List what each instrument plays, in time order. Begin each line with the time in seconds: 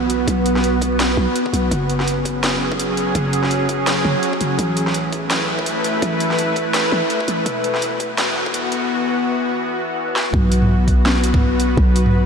Already playing: 808-style bass B1, synth drone B3 F#4 B4
0.10 closed hi-hat, mid tom
0.28 808-style bass B1, kick, closed hi-hat, mid tom
0.46 closed hi-hat
0.56 snare
0.64 closed hi-hat
0.74 mid tom
0.82 kick, closed hi-hat
0.92 mid tom
1.00 snare, closed hi-hat
1.17 808-style bass B1, mid tom
1.36 closed hi-hat, mid tom
1.46 kick
1.53 808-style bass B1, closed hi-hat, mid tom
1.71 808-style bass F#1, synth drone F#3 C#4 G#4, kick, closed hi-hat
1.82 mid tom
1.90 closed hi-hat
2.00 snare, mid tom
2.08 closed hi-hat
2.18 mid tom
2.25 kick, closed hi-hat
2.44 snare, closed hi-hat, mid tom
2.62 mid tom
2.72 kick
2.79 closed hi-hat, mid tom
2.97 closed hi-hat
3.08 mid tom
3.15 808-style bass F#1, kick, closed hi-hat
3.26 mid tom
3.33 closed hi-hat
3.43 snare
3.51 closed hi-hat
3.69 kick, closed hi-hat, mid tom
3.87 snare, closed hi-hat, mid tom
4.05 808-style bass F#1, mid tom
4.23 closed hi-hat
4.33 kick, mid tom
4.41 808-style bass F#1, closed hi-hat
4.51 mid tom
4.59 808-style bass A1, synth drone A3 E4 B4, kick, closed hi-hat
4.77 closed hi-hat, mid tom
4.87 snare
4.94 closed hi-hat
5.05 mid tom
5.13 kick, closed hi-hat
5.23 mid tom
5.30 snare, closed hi-hat
5.41 mid tom
5.59 kick
5.66 closed hi-hat, mid tom
5.84 closed hi-hat, mid tom
6.02 808-style bass A1, kick, closed hi-hat, mid tom
6.20 closed hi-hat
6.31 snare
6.39 closed hi-hat
6.49 mid tom
6.56 kick, closed hi-hat
6.67 mid tom
6.74 snare, closed hi-hat
6.92 808-style bass A1, mid tom
7.10 closed hi-hat
7.20 kick
7.28 808-style bass A1, closed hi-hat, mid tom
7.46 808-style bass E1, synth drone E3 B3 F#4, kick, closed hi-hat
7.56 mid tom
7.64 closed hi-hat
7.74 snare, mid tom
7.82 closed hi-hat
7.93 mid tom
8.00 kick, closed hi-hat
8.18 snare, closed hi-hat
8.36 mid tom
8.46 kick
8.54 closed hi-hat, mid tom
8.72 closed hi-hat
8.82 mid tom
10.08 high tom
10.16 snare
10.26 mid tom
10.34 808-style bass B1, synth drone B3 F#4 B4, kick
10.52 closed hi-hat
10.62 mid tom
10.88 kick, closed hi-hat
11.06 snare
11.24 closed hi-hat
11.34 kick, mid tom
11.60 closed hi-hat
11.77 808-style bass B1, kick
11.96 closed hi-hat
12.06 mid tom